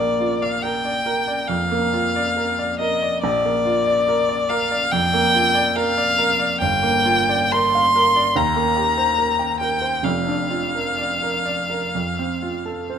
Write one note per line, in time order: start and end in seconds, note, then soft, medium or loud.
0.00 1.44 A#1 medium
0.00 0.32 A#3 soft
0.00 0.44 D5 medium
0.20 0.55 F4 soft
0.42 0.76 D5 soft
0.42 0.64 F5 medium
0.62 0.97 A#4 soft
0.62 1.49 G5 medium
0.85 1.19 D5 soft
1.06 1.40 A#4 medium
1.28 1.62 D5 soft
1.48 1.84 F2 medium
1.48 2.78 F5 medium
1.71 2.06 A#3 medium
1.93 2.28 F4 soft
2.16 2.50 D5 soft
2.37 2.71 A#4 soft
2.59 2.93 D5 soft
2.79 3.14 A#4 soft
2.79 3.21 D#5 medium
3.02 3.23 D5 soft
3.22 4.89 A#1 medium
3.22 4.51 D5 medium
3.45 3.79 A#3 soft
3.65 3.99 F4 soft
3.87 4.21 D5 medium
4.08 4.42 A#4 medium
4.29 4.63 D5 medium
4.50 4.84 A#4 medium
4.50 4.93 F5 medium
4.71 5.05 D5 medium
4.91 5.26 F2 medium
4.91 5.78 G5 loud
5.13 5.47 A#3 medium
5.35 5.68 F4 medium
5.55 5.89 D5 medium
5.76 6.10 A#4 medium
5.76 6.60 F5 loud
5.97 6.31 D5 medium
6.18 6.52 A#4 medium
6.39 6.60 D5 medium
6.60 8.32 G1 medium
6.60 7.53 G5 loud
6.83 7.20 A#3 medium
7.06 7.43 F4 medium
7.29 7.66 D5 medium
7.52 7.87 A#4 medium
7.52 8.38 C6 loud
7.75 8.08 F5 medium
7.96 8.28 A#4 medium
8.16 8.36 D5 medium
8.36 10.00 D#2 medium
8.36 9.59 A#5 medium
8.56 8.89 A#3 medium
8.76 9.09 G4 soft
8.98 9.31 C5 medium
9.18 9.52 A#4 soft
9.39 9.73 G5 soft
9.60 9.95 A#4 soft
9.60 10.06 G5 medium
9.82 10.04 C5 soft
10.03 11.89 F1 medium
10.03 11.90 F2 medium
10.03 12.98 F5 medium
10.27 10.64 D4 soft
10.50 10.88 F4 soft
10.75 11.12 A#4 soft
10.98 11.36 D5 soft
11.22 11.60 A#4 soft
11.45 11.84 D5 soft
11.70 11.94 A#4 soft
11.95 12.98 F2 soft
12.19 12.56 C4 soft
12.42 12.80 F4 soft
12.66 12.98 A4 soft
12.90 12.98 C5 soft